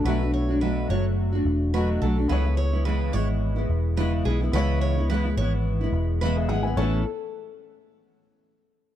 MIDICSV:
0, 0, Header, 1, 5, 480
1, 0, Start_track
1, 0, Key_signature, 3, "major"
1, 0, Tempo, 559441
1, 44, Time_signature, 4, 2, 24, 8
1, 7686, End_track
2, 0, Start_track
2, 0, Title_t, "Steel-string acoustic guitar"
2, 0, Program_c, 0, 25
2, 47, Note_on_c, 0, 71, 93
2, 274, Note_off_c, 0, 71, 0
2, 288, Note_on_c, 0, 73, 65
2, 514, Note_off_c, 0, 73, 0
2, 525, Note_on_c, 0, 71, 73
2, 753, Note_off_c, 0, 71, 0
2, 772, Note_on_c, 0, 73, 79
2, 894, Note_off_c, 0, 73, 0
2, 1491, Note_on_c, 0, 71, 69
2, 1613, Note_off_c, 0, 71, 0
2, 1730, Note_on_c, 0, 69, 71
2, 1852, Note_off_c, 0, 69, 0
2, 1968, Note_on_c, 0, 71, 88
2, 2194, Note_off_c, 0, 71, 0
2, 2206, Note_on_c, 0, 73, 71
2, 2433, Note_off_c, 0, 73, 0
2, 2447, Note_on_c, 0, 71, 77
2, 2687, Note_off_c, 0, 71, 0
2, 2687, Note_on_c, 0, 73, 88
2, 2811, Note_off_c, 0, 73, 0
2, 3409, Note_on_c, 0, 71, 77
2, 3532, Note_off_c, 0, 71, 0
2, 3649, Note_on_c, 0, 68, 69
2, 3772, Note_off_c, 0, 68, 0
2, 3889, Note_on_c, 0, 71, 89
2, 4115, Note_off_c, 0, 71, 0
2, 4129, Note_on_c, 0, 73, 73
2, 4355, Note_off_c, 0, 73, 0
2, 4373, Note_on_c, 0, 71, 84
2, 4597, Note_off_c, 0, 71, 0
2, 4611, Note_on_c, 0, 73, 84
2, 4733, Note_off_c, 0, 73, 0
2, 5330, Note_on_c, 0, 71, 79
2, 5452, Note_off_c, 0, 71, 0
2, 5569, Note_on_c, 0, 68, 66
2, 5692, Note_off_c, 0, 68, 0
2, 5811, Note_on_c, 0, 69, 74
2, 6031, Note_off_c, 0, 69, 0
2, 7686, End_track
3, 0, Start_track
3, 0, Title_t, "Grand piano"
3, 0, Program_c, 1, 0
3, 0, Control_c, 1, 64, 127
3, 34, Note_on_c, 1, 59, 72
3, 46, Note_on_c, 1, 66, 71
3, 57, Note_on_c, 1, 69, 65
3, 70, Note_on_c, 1, 76, 76
3, 1925, Note_off_c, 1, 59, 0
3, 1931, Note_off_c, 1, 66, 0
3, 1936, Note_off_c, 1, 69, 0
3, 1943, Note_off_c, 1, 76, 0
3, 1956, Note_on_c, 1, 59, 76
3, 1966, Note_on_c, 1, 64, 72
3, 1973, Control_c, 1, 64, 0
3, 1978, Note_on_c, 1, 68, 61
3, 1993, Note_on_c, 1, 73, 82
3, 2146, Control_c, 1, 64, 127
3, 3846, Note_off_c, 1, 59, 0
3, 3850, Note_off_c, 1, 64, 0
3, 3857, Note_off_c, 1, 68, 0
3, 3864, Note_off_c, 1, 73, 0
3, 3875, Note_on_c, 1, 59, 73
3, 3887, Note_on_c, 1, 64, 64
3, 3900, Note_on_c, 1, 68, 69
3, 3909, Note_on_c, 1, 73, 90
3, 5303, Note_off_c, 1, 68, 0
3, 5308, Note_off_c, 1, 73, 0
3, 5462, Note_on_c, 1, 68, 66
3, 5462, Note_on_c, 1, 76, 68
3, 5562, Note_off_c, 1, 68, 0
3, 5562, Note_off_c, 1, 76, 0
3, 5564, Note_on_c, 1, 78, 74
3, 5688, Note_on_c, 1, 80, 63
3, 5689, Note_off_c, 1, 78, 0
3, 5695, Note_on_c, 1, 71, 56
3, 5765, Note_off_c, 1, 59, 0
3, 5771, Note_off_c, 1, 64, 0
3, 5804, Note_on_c, 1, 69, 68
3, 5805, Note_on_c, 1, 59, 69
3, 5805, Note_on_c, 1, 64, 75
3, 5810, Note_on_c, 1, 73, 90
3, 5816, Control_c, 1, 64, 0
3, 5920, Note_off_c, 1, 80, 0
3, 5923, Note_off_c, 1, 71, 0
3, 6027, Note_off_c, 1, 69, 0
3, 6028, Note_off_c, 1, 59, 0
3, 6028, Note_off_c, 1, 64, 0
3, 6030, Note_off_c, 1, 73, 0
3, 7686, End_track
4, 0, Start_track
4, 0, Title_t, "Nylon-string guitar"
4, 0, Program_c, 2, 24
4, 46, Note_on_c, 2, 47, 93
4, 49, Note_on_c, 2, 54, 84
4, 52, Note_on_c, 2, 57, 95
4, 56, Note_on_c, 2, 62, 98
4, 58, Note_on_c, 2, 66, 99
4, 167, Note_off_c, 2, 66, 0
4, 177, Note_off_c, 2, 47, 0
4, 177, Note_on_c, 2, 66, 57
4, 179, Note_off_c, 2, 54, 0
4, 179, Note_off_c, 2, 62, 0
4, 180, Note_off_c, 2, 57, 0
4, 189, Note_on_c, 2, 62, 52
4, 196, Note_on_c, 2, 57, 48
4, 406, Note_off_c, 2, 66, 0
4, 416, Note_on_c, 2, 66, 61
4, 417, Note_off_c, 2, 62, 0
4, 426, Note_off_c, 2, 57, 0
4, 428, Note_on_c, 2, 62, 66
4, 437, Note_on_c, 2, 57, 52
4, 521, Note_on_c, 2, 47, 82
4, 523, Note_off_c, 2, 57, 0
4, 524, Note_off_c, 2, 66, 0
4, 525, Note_off_c, 2, 62, 0
4, 531, Note_on_c, 2, 54, 86
4, 533, Note_on_c, 2, 57, 80
4, 535, Note_on_c, 2, 62, 93
4, 537, Note_on_c, 2, 66, 95
4, 752, Note_off_c, 2, 54, 0
4, 759, Note_off_c, 2, 57, 0
4, 762, Note_off_c, 2, 47, 0
4, 762, Note_on_c, 2, 54, 59
4, 766, Note_off_c, 2, 62, 0
4, 769, Note_on_c, 2, 57, 66
4, 771, Note_off_c, 2, 66, 0
4, 776, Note_on_c, 2, 62, 68
4, 783, Note_on_c, 2, 66, 77
4, 1126, Note_off_c, 2, 66, 0
4, 1135, Note_off_c, 2, 54, 0
4, 1136, Note_on_c, 2, 66, 57
4, 1138, Note_off_c, 2, 62, 0
4, 1139, Note_off_c, 2, 57, 0
4, 1148, Note_on_c, 2, 62, 62
4, 1158, Note_on_c, 2, 57, 53
4, 1481, Note_off_c, 2, 57, 0
4, 1484, Note_off_c, 2, 66, 0
4, 1487, Note_off_c, 2, 62, 0
4, 1489, Note_on_c, 2, 47, 82
4, 1491, Note_on_c, 2, 57, 91
4, 1492, Note_on_c, 2, 54, 87
4, 1497, Note_on_c, 2, 62, 90
4, 1500, Note_on_c, 2, 66, 91
4, 1719, Note_off_c, 2, 54, 0
4, 1726, Note_off_c, 2, 47, 0
4, 1728, Note_off_c, 2, 57, 0
4, 1729, Note_on_c, 2, 54, 67
4, 1731, Note_off_c, 2, 62, 0
4, 1732, Note_off_c, 2, 66, 0
4, 1742, Note_on_c, 2, 57, 69
4, 1748, Note_on_c, 2, 62, 75
4, 1752, Note_on_c, 2, 66, 65
4, 1844, Note_off_c, 2, 66, 0
4, 1853, Note_off_c, 2, 62, 0
4, 1854, Note_on_c, 2, 66, 57
4, 1859, Note_off_c, 2, 54, 0
4, 1863, Note_on_c, 2, 62, 54
4, 1865, Note_off_c, 2, 57, 0
4, 1876, Note_on_c, 2, 57, 50
4, 1962, Note_on_c, 2, 49, 91
4, 1963, Note_off_c, 2, 57, 0
4, 1963, Note_off_c, 2, 66, 0
4, 1966, Note_off_c, 2, 62, 0
4, 1967, Note_on_c, 2, 52, 95
4, 1967, Note_on_c, 2, 56, 98
4, 1970, Note_on_c, 2, 59, 105
4, 1976, Note_on_c, 2, 64, 97
4, 2090, Note_off_c, 2, 64, 0
4, 2095, Note_off_c, 2, 49, 0
4, 2097, Note_off_c, 2, 56, 0
4, 2098, Note_off_c, 2, 52, 0
4, 2099, Note_off_c, 2, 59, 0
4, 2101, Note_on_c, 2, 64, 61
4, 2111, Note_on_c, 2, 59, 50
4, 2118, Note_on_c, 2, 56, 44
4, 2333, Note_off_c, 2, 64, 0
4, 2343, Note_off_c, 2, 59, 0
4, 2343, Note_on_c, 2, 64, 70
4, 2347, Note_off_c, 2, 56, 0
4, 2352, Note_on_c, 2, 59, 59
4, 2358, Note_on_c, 2, 56, 55
4, 2444, Note_off_c, 2, 56, 0
4, 2446, Note_on_c, 2, 49, 92
4, 2448, Note_off_c, 2, 59, 0
4, 2448, Note_off_c, 2, 64, 0
4, 2454, Note_on_c, 2, 56, 98
4, 2455, Note_on_c, 2, 52, 82
4, 2459, Note_on_c, 2, 59, 98
4, 2461, Note_on_c, 2, 64, 95
4, 2670, Note_off_c, 2, 52, 0
4, 2680, Note_on_c, 2, 52, 72
4, 2683, Note_off_c, 2, 56, 0
4, 2685, Note_off_c, 2, 49, 0
4, 2689, Note_off_c, 2, 59, 0
4, 2693, Note_off_c, 2, 64, 0
4, 2694, Note_on_c, 2, 56, 72
4, 2699, Note_on_c, 2, 59, 61
4, 2703, Note_on_c, 2, 64, 69
4, 3043, Note_off_c, 2, 64, 0
4, 3050, Note_off_c, 2, 59, 0
4, 3053, Note_on_c, 2, 64, 69
4, 3054, Note_off_c, 2, 52, 0
4, 3060, Note_on_c, 2, 59, 61
4, 3061, Note_off_c, 2, 56, 0
4, 3073, Note_on_c, 2, 56, 56
4, 3403, Note_off_c, 2, 59, 0
4, 3403, Note_off_c, 2, 64, 0
4, 3403, Note_on_c, 2, 49, 84
4, 3404, Note_off_c, 2, 56, 0
4, 3408, Note_on_c, 2, 52, 79
4, 3414, Note_on_c, 2, 56, 94
4, 3414, Note_on_c, 2, 59, 107
4, 3418, Note_on_c, 2, 64, 98
4, 3640, Note_off_c, 2, 52, 0
4, 3643, Note_off_c, 2, 49, 0
4, 3649, Note_off_c, 2, 56, 0
4, 3649, Note_off_c, 2, 59, 0
4, 3650, Note_on_c, 2, 52, 78
4, 3651, Note_off_c, 2, 64, 0
4, 3661, Note_on_c, 2, 56, 67
4, 3663, Note_on_c, 2, 59, 76
4, 3668, Note_on_c, 2, 64, 78
4, 3772, Note_off_c, 2, 64, 0
4, 3779, Note_off_c, 2, 52, 0
4, 3782, Note_on_c, 2, 64, 63
4, 3784, Note_off_c, 2, 56, 0
4, 3785, Note_off_c, 2, 59, 0
4, 3796, Note_on_c, 2, 59, 55
4, 3805, Note_on_c, 2, 56, 51
4, 3887, Note_off_c, 2, 64, 0
4, 3888, Note_off_c, 2, 56, 0
4, 3893, Note_on_c, 2, 49, 96
4, 3894, Note_off_c, 2, 59, 0
4, 3895, Note_on_c, 2, 52, 97
4, 3899, Note_on_c, 2, 56, 102
4, 3905, Note_on_c, 2, 59, 108
4, 3907, Note_on_c, 2, 64, 112
4, 4259, Note_off_c, 2, 64, 0
4, 4260, Note_off_c, 2, 49, 0
4, 4262, Note_off_c, 2, 52, 0
4, 4263, Note_off_c, 2, 56, 0
4, 4267, Note_off_c, 2, 59, 0
4, 4270, Note_on_c, 2, 64, 65
4, 4279, Note_on_c, 2, 59, 61
4, 4290, Note_on_c, 2, 56, 53
4, 4370, Note_on_c, 2, 49, 92
4, 4371, Note_off_c, 2, 64, 0
4, 4374, Note_off_c, 2, 56, 0
4, 4376, Note_off_c, 2, 59, 0
4, 4377, Note_on_c, 2, 52, 102
4, 4384, Note_on_c, 2, 56, 98
4, 4386, Note_on_c, 2, 59, 105
4, 4389, Note_on_c, 2, 64, 95
4, 4499, Note_off_c, 2, 49, 0
4, 4502, Note_off_c, 2, 52, 0
4, 4506, Note_off_c, 2, 56, 0
4, 4506, Note_off_c, 2, 64, 0
4, 4507, Note_off_c, 2, 59, 0
4, 4517, Note_on_c, 2, 64, 46
4, 4527, Note_on_c, 2, 59, 47
4, 4535, Note_on_c, 2, 56, 44
4, 4614, Note_off_c, 2, 64, 0
4, 4619, Note_off_c, 2, 59, 0
4, 4624, Note_off_c, 2, 56, 0
4, 4624, Note_on_c, 2, 52, 67
4, 4635, Note_on_c, 2, 56, 66
4, 4637, Note_on_c, 2, 59, 71
4, 4644, Note_on_c, 2, 64, 76
4, 4973, Note_off_c, 2, 64, 0
4, 4983, Note_on_c, 2, 64, 71
4, 4986, Note_off_c, 2, 52, 0
4, 4988, Note_off_c, 2, 59, 0
4, 4992, Note_off_c, 2, 56, 0
4, 4998, Note_on_c, 2, 59, 58
4, 5003, Note_on_c, 2, 56, 55
4, 5327, Note_off_c, 2, 64, 0
4, 5331, Note_off_c, 2, 56, 0
4, 5335, Note_off_c, 2, 59, 0
4, 5335, Note_on_c, 2, 49, 89
4, 5337, Note_on_c, 2, 52, 89
4, 5341, Note_on_c, 2, 56, 91
4, 5345, Note_on_c, 2, 59, 87
4, 5349, Note_on_c, 2, 64, 92
4, 5569, Note_off_c, 2, 49, 0
4, 5570, Note_off_c, 2, 52, 0
4, 5573, Note_off_c, 2, 56, 0
4, 5574, Note_off_c, 2, 59, 0
4, 5576, Note_off_c, 2, 64, 0
4, 5580, Note_on_c, 2, 52, 59
4, 5585, Note_on_c, 2, 56, 77
4, 5590, Note_on_c, 2, 59, 63
4, 5598, Note_on_c, 2, 64, 69
4, 5687, Note_off_c, 2, 64, 0
4, 5697, Note_on_c, 2, 64, 68
4, 5703, Note_off_c, 2, 59, 0
4, 5704, Note_off_c, 2, 52, 0
4, 5706, Note_off_c, 2, 56, 0
4, 5713, Note_on_c, 2, 59, 55
4, 5721, Note_on_c, 2, 56, 52
4, 5804, Note_off_c, 2, 64, 0
4, 5809, Note_off_c, 2, 59, 0
4, 5811, Note_on_c, 2, 45, 79
4, 5815, Note_on_c, 2, 52, 81
4, 5816, Note_off_c, 2, 56, 0
4, 5819, Note_on_c, 2, 59, 95
4, 5826, Note_on_c, 2, 61, 89
4, 5831, Note_on_c, 2, 64, 98
4, 6004, Note_off_c, 2, 45, 0
4, 6006, Note_off_c, 2, 52, 0
4, 6008, Note_off_c, 2, 59, 0
4, 6012, Note_off_c, 2, 61, 0
4, 6014, Note_off_c, 2, 64, 0
4, 7686, End_track
5, 0, Start_track
5, 0, Title_t, "Fingered electric bass"
5, 0, Program_c, 3, 33
5, 42, Note_on_c, 3, 35, 90
5, 729, Note_off_c, 3, 35, 0
5, 766, Note_on_c, 3, 30, 88
5, 1211, Note_off_c, 3, 30, 0
5, 1244, Note_on_c, 3, 28, 86
5, 1690, Note_off_c, 3, 28, 0
5, 1730, Note_on_c, 3, 35, 83
5, 1948, Note_off_c, 3, 35, 0
5, 1975, Note_on_c, 3, 37, 103
5, 2655, Note_off_c, 3, 37, 0
5, 2692, Note_on_c, 3, 32, 80
5, 3134, Note_off_c, 3, 32, 0
5, 3168, Note_on_c, 3, 28, 80
5, 3612, Note_off_c, 3, 28, 0
5, 3650, Note_on_c, 3, 35, 82
5, 3868, Note_off_c, 3, 35, 0
5, 3886, Note_on_c, 3, 37, 105
5, 4571, Note_off_c, 3, 37, 0
5, 4606, Note_on_c, 3, 32, 80
5, 5051, Note_off_c, 3, 32, 0
5, 5081, Note_on_c, 3, 28, 95
5, 5560, Note_off_c, 3, 28, 0
5, 5560, Note_on_c, 3, 32, 81
5, 5782, Note_off_c, 3, 32, 0
5, 5805, Note_on_c, 3, 33, 81
5, 6027, Note_off_c, 3, 33, 0
5, 7686, End_track
0, 0, End_of_file